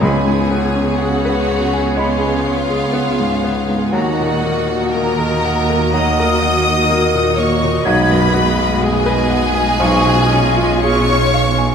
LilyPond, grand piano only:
\new Staff \with { instrumentName = "Grand piano" } { \time 4/4 \key cis \mixolydian \tempo 4 = 61 cis,16 gis,16 b16 cis'16 gis'16 b'16 cis''16 gis''16 cis''16 gis''16 cis''16 gis'16 b16 gis,16 b16 gis,16 | dis,16 ais,16 ais16 fis'16 ais16 ais'16 fis''16 ais'16 fis''16 ais'16 fis''16 fis'16 ais16 ais,16 ais16 ais,16 | b,,16 fis,16 b16 fis'16 gis'16 b'16 fis''16 gis''16 b,,16 b,16 cis'16 eis'16 gis'16 cis''16 eis''16 gis''16 | }